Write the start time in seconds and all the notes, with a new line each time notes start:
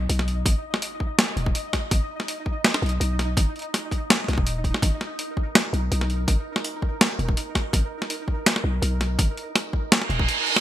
Already playing: D#4 D#5, impact
0.09 B1, closed hi-hat
0.19 snare
0.28 closed hi-hat
0.46 G#1, kick, closed hi-hat
0.74 snare
0.82 closed hi-hat
1.00 kick
1.19 snare, closed hi-hat
1.37 D#1, closed hi-hat
1.46 kick
1.55 closed hi-hat
1.73 kick, snare, closed hi-hat
1.91 G#1, kick, closed hi-hat
2.20 snare
2.28 closed hi-hat
2.46 kick
2.65 snare
2.74 snare
2.82 B1, closed hi-hat
2.86 closed hi-hat
2.89 closed hi-hat
3.00 B1, closed hi-hat
3.19 snare, closed hi-hat
3.37 G#1, kick, closed hi-hat
3.56 closed hi-hat
3.59 closed hi-hat
3.62 closed hi-hat
3.74 snare, closed hi-hat
3.91 kick, closed hi-hat
4.10 snare, closed hi-hat
4.20 snare
4.24 snare
4.28 B1, snare, closed hi-hat
4.33 snare
4.38 D#1, kick
4.47 closed hi-hat
4.64 kick, closed hi-hat
4.74 snare
4.82 G#1 A#4, kick, closed hi-hat
5.01 snare
5.19 closed hi-hat
5.37 kick
5.55 snare, closed hi-hat
5.73 B1, closed hi-hat
5.92 B1, closed hi-hat
6.01 snare
6.10 closed hi-hat
6.28 G#1, kick, closed hi-hat
6.56 snare
6.64 closed hi-hat
6.82 kick
7.01 snare, closed hi-hat
7.19 D#1, closed hi-hat
7.29 kick
7.37 closed hi-hat
7.55 kick, snare, closed hi-hat
7.73 G#1, kick, closed hi-hat
8.02 snare
8.10 closed hi-hat
8.28 kick
8.46 snare, closed hi-hat
8.56 snare
8.64 B1
8.82 B1, closed hi-hat
9.01 snare, closed hi-hat
9.19 G#1, kick, closed hi-hat
9.37 closed hi-hat
9.55 snare, closed hi-hat
9.73 kick
9.91 snare, closed hi-hat, reverse cymbal
10.02 snare
10.10 D#1, closed hi-hat
10.19 kick
10.29 closed hi-hat
10.47 closed hi-hat
10.56 snare